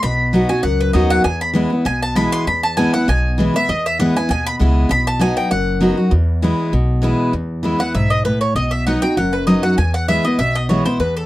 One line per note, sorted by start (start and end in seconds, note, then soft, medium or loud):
0.03 0.43 B1 medium
0.03 0.62 B2 medium
0.03 0.46 B5 loud
0.33 0.49 F#3 medium
0.33 0.49 B3 medium
0.33 0.50 D#4 loud
0.33 0.48 F#4 loud
0.49 0.64 D#4 medium
0.49 0.63 F#4 medium
0.49 0.63 G#5 medium
0.63 0.90 C#2 medium
0.63 1.22 F#2 loud
0.63 0.79 F#5 medium
0.80 0.93 B4 medium
0.93 1.20 D#2 loud
0.93 1.23 F#3 loud
0.93 1.24 B3 loud
0.93 1.24 D#4 loud
0.93 1.24 F#4 loud
0.93 1.10 D#5 medium
1.10 1.24 F#5 loud
1.24 1.83 E2 medium
1.24 1.65 E2 medium
1.24 1.40 G#5 medium
1.41 1.50 B5 medium
1.53 1.70 E3 loud
1.53 1.71 G#3 loud
1.53 1.71 B3 loud
1.53 1.69 E4 loud
1.70 1.86 B3 soft
1.70 1.85 E4 medium
1.85 2.26 B1 medium
1.85 2.44 B2 medium
1.85 2.02 G#5 medium
2.02 2.16 A5 medium
2.15 2.45 E3 loud
2.15 2.45 G#3 loud
2.15 2.46 B3 medium
2.15 2.46 E4 loud
2.15 2.32 B5 medium
2.32 2.46 C6 loud
2.47 2.87 E2 medium
2.47 3.05 E2 medium
2.47 2.63 B5 medium
2.63 2.77 A5 medium
2.77 2.93 E3 medium
2.77 2.93 G#3 medium
2.77 2.94 B3 loud
2.77 2.93 E4 loud
2.77 2.93 G#5 medium
2.94 3.08 B3 medium
2.94 3.08 E4 medium
2.94 3.07 F#5 loud
3.08 3.48 B1 medium
3.08 3.66 B2 loud
3.08 3.52 G#5 medium
3.38 3.54 E3 loud
3.38 3.54 G#3 medium
3.38 3.55 B3 loud
3.38 3.53 E4 loud
3.54 3.69 B3 medium
3.54 3.68 E4 medium
3.54 3.69 E5 loud
3.69 4.09 E2 medium
3.69 4.27 E2 medium
3.69 3.85 D#5 medium
3.86 3.99 E5 medium
3.99 4.15 E3 medium
3.99 4.15 G#3 loud
3.99 4.16 B3 loud
3.99 4.15 E4 loud
3.99 4.15 F#5 medium
4.16 4.30 B3 medium
4.16 4.29 E4 medium
4.16 4.29 G#5 medium
4.29 4.56 D#2 medium
4.29 4.87 B2 loud
4.29 4.46 G#5 loud
4.46 4.55 B5 loud
4.59 4.86 C#2 medium
4.59 4.89 E3 medium
4.59 4.89 G#3 loud
4.59 4.89 B3 loud
4.59 4.90 E4 loud
4.89 5.30 B1 medium
4.89 5.48 B2 medium
4.89 5.06 B5 loud
5.07 5.21 A5 loud
5.19 5.49 F#3 medium
5.19 5.50 B3 medium
5.19 5.50 D#4 loud
5.19 5.50 F#4 loud
5.19 5.36 G#5 medium
5.37 5.51 G5 medium
5.51 5.91 F#1 medium
5.51 6.09 F#2 medium
5.51 6.08 F#5 medium
5.81 5.97 F#3 medium
5.81 5.97 B3 loud
5.81 5.98 D#4 loud
5.81 5.96 F#4 loud
5.97 6.12 D#4 soft
5.97 6.11 F#4 medium
6.11 6.70 E2 medium
6.11 6.52 E2 medium
6.42 6.72 E3 medium
6.42 6.72 G#3 loud
6.42 6.72 B3 loud
6.42 6.72 E4 loud
6.73 7.13 B1 medium
6.73 7.31 B2 loud
7.02 7.32 E3 medium
7.02 7.32 G#3 loud
7.02 7.32 B3 medium
7.02 7.33 E4 loud
7.33 7.92 E2 medium
7.33 7.73 E2 medium
7.63 7.79 E3 medium
7.63 7.80 G#3 medium
7.63 7.80 B3 medium
7.63 7.77 E4 medium
7.79 7.94 B3 soft
7.79 7.93 E4 medium
7.79 7.94 F#5 medium
7.94 8.34 B1 medium
7.94 8.24 G#2 medium
7.94 8.11 E5 medium
8.10 8.24 D#5 medium
8.25 8.54 A2 medium
8.25 8.40 B4 medium
8.41 8.55 C#5 medium
8.55 8.95 B1 medium
8.55 9.14 B2 medium
8.55 8.72 D#5 medium
8.71 8.85 E5 medium
8.87 9.02 F#3 medium
8.87 9.03 B3 medium
8.87 9.03 D#4 loud
8.87 9.01 F#4 loud
8.87 9.02 F#5 medium
9.02 9.17 D#4 medium
9.02 9.16 F#4 medium
9.02 9.16 G5 loud
9.17 9.57 F#1 medium
9.17 9.76 F#2 medium
9.17 9.33 F#5 medium
9.33 9.46 B4 medium
9.47 9.63 F#3 medium
9.47 9.63 B3 medium
9.47 9.63 D#4 loud
9.47 9.62 F#4 loud
9.47 9.63 D#5 medium
9.63 9.78 D#4 soft
9.63 9.77 F#4 medium
9.63 9.77 F#5 loud
9.78 10.18 E2 medium
9.78 10.36 E2 medium
9.78 9.94 G#5 medium
9.94 10.08 F#5 medium
10.08 10.24 E3 loud
10.08 10.24 G#3 loud
10.08 10.25 B3 medium
10.08 10.24 E4 medium
10.08 10.24 E5 medium
10.24 10.40 B3 medium
10.24 10.38 E4 medium
10.24 10.38 D#5 medium
10.39 10.79 B1 medium
10.39 10.97 B2 medium
10.39 10.55 E5 medium
10.55 10.69 D#5 loud
10.69 10.85 E3 medium
10.69 10.86 G#3 medium
10.69 10.86 B3 loud
10.69 10.84 E4 loud
10.69 10.85 C#5 medium
10.85 11.00 B3 soft
10.85 10.99 E4 medium
10.85 10.99 C5 medium
10.99 11.26 E2 medium
10.99 11.16 B4 medium
11.17 11.26 A4 medium